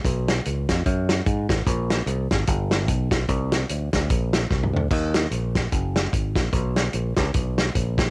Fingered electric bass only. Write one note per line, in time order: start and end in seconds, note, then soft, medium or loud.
0.05 0.39 B1 loud
0.46 0.66 C#2 medium
0.69 0.83 F2 medium
0.86 1.20 F#2 medium
1.26 1.46 G#2 medium
1.49 1.64 A1 medium
1.66 2.01 A#1 loud
2.06 2.27 C2 medium
2.31 2.45 G#1 medium
2.48 2.88 G1 loud
2.88 3.08 B1 medium
3.11 3.26 B1 medium
3.29 3.63 C2 loud
3.70 3.90 D2 medium
3.93 4.08 D2 medium
4.11 4.45 A#1 loud
4.51 4.71 C2 medium
4.73 4.88 D2 medium
4.91 5.26 D#2 medium
5.31 5.66 A#1 medium
5.72 6.07 F#1 medium
6.13 6.33 G#1 medium
6.36 6.51 A#1 medium
6.53 6.88 B1 medium
6.94 7.14 A#1 medium
7.17 7.32 C#2 medium
7.35 7.69 B1 medium
7.75 8.10 A#1 medium